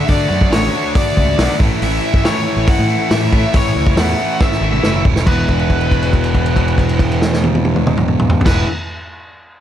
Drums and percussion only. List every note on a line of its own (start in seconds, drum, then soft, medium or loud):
0.08 kick loud
0.08 open hi-hat medium
0.41 kick medium
0.52 snare loud
0.52 open hi-hat medium
0.95 kick loud
0.95 open hi-hat medium
1.17 kick medium
1.39 snare loud
1.39 open hi-hat medium
1.60 kick loud
1.82 open hi-hat medium
2.14 kick medium
2.25 snare loud
2.25 open hi-hat soft
2.67 kick loud
2.67 open hi-hat medium
3.11 snare loud
3.11 open hi-hat medium
3.33 kick medium
3.53 kick loud
3.53 open hi-hat medium
3.87 kick medium
3.97 snare loud
3.97 open hi-hat medium
4.41 kick loud
4.41 snare medium
4.52 snare medium
4.73 mid tom medium
4.83 snare medium
5.05 kick medium
5.16 snare medium
5.27 kick loud
5.27 crash medium
5.48 kick medium
5.48 crash soft
5.59 crash soft
5.70 kick medium
5.70 crash soft
5.81 crash soft
5.91 kick medium
5.91 crash soft
6.03 crash soft
6.13 kick medium
6.13 crash soft
6.24 crash soft
6.35 kick medium
6.35 crash soft
6.46 crash medium
6.56 kick medium
6.56 crash soft
6.68 crash soft
6.78 kick medium
6.78 crash soft
6.89 crash medium
6.99 kick medium
6.99 crash medium
7.12 crash medium
7.22 snare medium
7.33 snare medium
7.44 high tom medium
7.55 high tom loud
7.65 high tom medium
7.76 mid tom medium
7.87 mid tom loud
7.97 mid tom loud
8.08 mid tom medium
8.19 mid tom loud
8.30 floor tom loud
8.41 floor tom loud
8.46 kick loud
8.46 snare medium
8.46 crash medium